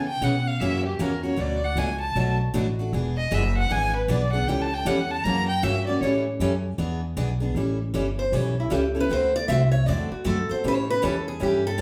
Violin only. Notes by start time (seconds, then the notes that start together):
0.08 G5
0.23 F#5
0.47 F5
0.60 E5
0.86 G4
1.01 A#4
1.24 C#5
1.41 D5
1.64 F#5
1.78 G#5
2.01 A5
3.17 D#5
3.34 E5
3.57 F#5
3.72 G#5
3.96 B4
4.09 D5
4.33 F#5
4.48 G5
4.61 A5
4.74 G5
4.87 F#5
5.11 A5
5.24 A#5
5.49 G5
5.63 E5
5.87 D5
6.01 C#5